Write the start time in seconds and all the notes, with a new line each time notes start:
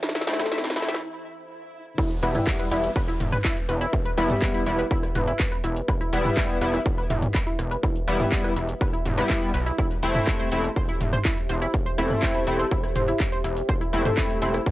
Already playing: E3 E4 G4 A4 C5 E5, riser
0.03 E4, snare, closed hi-hat
0.09 snare
0.15 E5, snare, closed hi-hat
0.21 snare
0.27 A3 C4 E4, snare, closed hi-hat
0.33 snare
0.40 E4, snare, closed hi-hat, mid tom
0.46 snare
0.52 E5, snare, closed hi-hat
0.58 snare
0.64 snare, closed hi-hat
0.70 snare
0.76 A3 C4 E4, snare, closed hi-hat
0.82 snare
0.88 E5, snare, closed hi-hat
0.94 snare
1.01 swell
1.98 E4 G4, kick, closed hi-hat, downlifter
2.10 closed hi-hat
2.23 E1 G3 B3 E4 B4, closed hi-hat
2.35 E4, closed hi-hat, mid tom
2.47 kick, cross-stick, clap, closed hi-hat
2.59 B4, closed hi-hat
2.64 B4
2.71 E1 G3 B3 E4, closed hi-hat
2.84 closed hi-hat
2.88 E5
2.96 B4, kick, closed hi-hat
3.08 E4, closed hi-hat
3.20 E1, closed hi-hat, mid tom
3.32 B4, cross-stick, closed hi-hat, mid tom
3.44 E4, kick, clap, closed hi-hat
3.57 closed hi-hat
3.69 E1 B4, closed hi-hat
3.81 E4, closed hi-hat
3.93 kick, closed hi-hat
4.05 B4, closed hi-hat
4.18 E1 G3 B3 E4, cross-stick, closed hi-hat
4.30 closed hi-hat, mid tom
4.42 B4, kick, clap, closed hi-hat
4.54 E4, closed hi-hat
4.66 E1 G3 B3 E4, closed hi-hat
4.79 B4, closed hi-hat
4.91 E4, kick, closed hi-hat
5.03 cross-stick, closed hi-hat
5.15 E1 B4, closed hi-hat, mid tom
5.27 E4, closed hi-hat
5.39 kick, clap, closed hi-hat
5.52 B4, closed hi-hat
5.64 E1 E4, closed hi-hat
5.76 closed hi-hat
5.88 B4, kick, cross-stick, closed hi-hat
6.01 E4, closed hi-hat
6.13 E1 G3 B3 E4, closed hi-hat
6.25 B4, closed hi-hat, mid tom
6.37 E4, kick, clap, closed hi-hat
6.49 closed hi-hat
6.61 E1 G3 B3 E4 B4, closed hi-hat
6.74 E4, cross-stick, closed hi-hat
6.86 kick, closed hi-hat
6.98 B4, closed hi-hat
7.10 E1 E4, closed hi-hat, mid tom
7.23 closed hi-hat, mid tom
7.35 B4, kick, clap, closed hi-hat
7.47 E4, closed hi-hat
7.59 E1, cross-stick, closed hi-hat
7.71 B4, closed hi-hat
7.83 E4, kick, closed hi-hat
7.96 closed hi-hat
8.08 E1 G3 B3 E4 B4, closed hi-hat
8.20 E4, closed hi-hat, mid tom
8.32 kick, clap, closed hi-hat
8.45 B4, cross-stick, closed hi-hat
8.57 E1 E4, closed hi-hat
8.69 closed hi-hat
8.81 B4, kick, closed hi-hat
8.93 E4, closed hi-hat
9.05 E1, closed hi-hat, mid tom
9.18 G3 B3 E4 B4, closed hi-hat
9.30 E4, kick, cross-stick, clap, closed hi-hat
9.42 closed hi-hat
9.54 B1 B4, closed hi-hat
9.66 E4, closed hi-hat
9.79 E4, kick, closed hi-hat
9.91 closed hi-hat
10.03 E1 A3 C4 E4 C5, closed hi-hat
10.15 E4, closed hi-hat, mid tom
10.27 kick, cross-stick, clap, closed hi-hat
10.40 C5, closed hi-hat
10.52 E1 A3 C4 E4 C5, closed hi-hat
10.64 closed hi-hat
10.76 C5, kick, closed hi-hat
10.88 E4, closed hi-hat
11.01 E1, closed hi-hat, mid tom
11.13 C5, cross-stick, closed hi-hat, mid tom
11.25 E4, kick, clap, closed hi-hat
11.37 closed hi-hat
11.49 E1 C5, closed hi-hat
11.62 E4, closed hi-hat
11.74 kick, closed hi-hat
11.86 C5, closed hi-hat
11.98 E1 A3 C4 E4, cross-stick, closed hi-hat
12.10 closed hi-hat, mid tom
12.22 C5, kick, clap, closed hi-hat
12.35 E4, closed hi-hat
12.47 E1 A3 C4 E4, closed hi-hat
12.59 C5, closed hi-hat
12.71 E4, kick, closed hi-hat
12.83 cross-stick, closed hi-hat
12.95 E1 C5, closed hi-hat, mid tom
13.08 E4, closed hi-hat
13.20 kick, clap, closed hi-hat
13.32 C5, closed hi-hat
13.44 E1 E4, closed hi-hat
13.57 closed hi-hat
13.69 C5, kick, cross-stick, closed hi-hat
13.81 E4, closed hi-hat
13.93 E1 A3 C4 E4, closed hi-hat
14.05 C5, closed hi-hat, mid tom
14.18 E4, kick, clap, closed hi-hat
14.30 closed hi-hat
14.42 E1 A3 C4 E4 C5, closed hi-hat
14.54 E4, cross-stick, closed hi-hat
14.66 kick, closed hi-hat